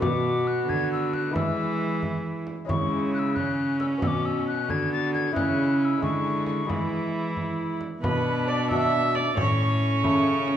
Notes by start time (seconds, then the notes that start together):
0.00 B2 B3 F#4 D6, frame drum
0.47 F#6
0.68 D3 G#6, frame drum
0.93 E6
1.14 F#6, frame drum
1.30 E3 G#3 B3 E4
1.35 E3 G#3 E4 E6, frame drum
2.03 frame drum
2.47 frame drum
2.65 C#3 G#3 C#4 E4
2.69 C#3 G#3 E4 C#6, frame drum
3.14 F#6
3.19 E6
3.35 C#4 F#6, frame drum
3.80 E6, frame drum
3.98 B2 B3 F#4
4.02 B2 E6, frame drum
4.07 D6
4.26 E6
4.48 F#6
4.68 D3 B3 F#4 G#6, frame drum
4.93 A6
5.14 G#6, frame drum
5.31 C#3 G#3 C#4 E4 G#4
5.35 C#3 E4 F#6, frame drum
5.81 F#6
5.85 E6
5.98 G#3 E4 G#4
6.02 D3 G#3 C#6, frame drum
6.46 C#6, frame drum
6.65 E3 G#3 E4 G#4
6.69 E3 E4 B5, frame drum
7.37 frame drum
7.81 frame drum
8.02 B2 D4 B4 B5, frame drum
8.48 D5 D6
8.70 B3 D4 F#4 E5 E6, frame drum
9.14 D5 D6, frame drum
9.36 A2 C#4 C#5 C#6, frame drum
10.03 C#3 E4 A4, frame drum
10.48 frame drum